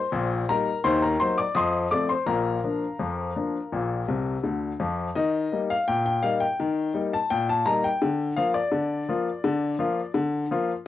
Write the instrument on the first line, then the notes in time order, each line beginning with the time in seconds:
upright piano
Already playing: C5 C6
0.12 A#1 A#2
0.49 G3 A#3 D#4 A#4 A#5
0.84 D#2 D#3 C5 C6
1.02 A#4 A#5
1.20 F#3 A#3 D#4 C5 C6
1.38 D5 D6
1.55 F2 F3 D#5 C6 D#6
1.91 F3 A3 C4 D5 D6
2.09 C5 C6
2.26 A#1 A#2 A#4 F5 A#5
2.64 F3 A#3 D4
2.99 F2 F3
3.36 F3 A#3 D4
3.72 A#1 A#2
4.08 C2 C3
4.44 D2 D3
4.80 F2 F3
5.16 D#3 D#5
5.52 G3 A#3 D#4
5.70 F5
5.88 A#2 G5
6.06 G5
6.23 G3 A#3 D#4 F5
6.40 G5
6.60 D#3
6.94 G3 A#3 D#4
7.13 A5
7.30 A#2 G5
7.49 A5
7.66 G3 A#3 D#4 A#5
7.84 G5
8.02 D3
8.36 F3 A#3 F4 F5
8.54 D5
8.72 D3
9.09 F3 A#3 F4
9.44 D3
9.79 F3 A#3 F4
10.14 D3
10.51 F3 A#3 F4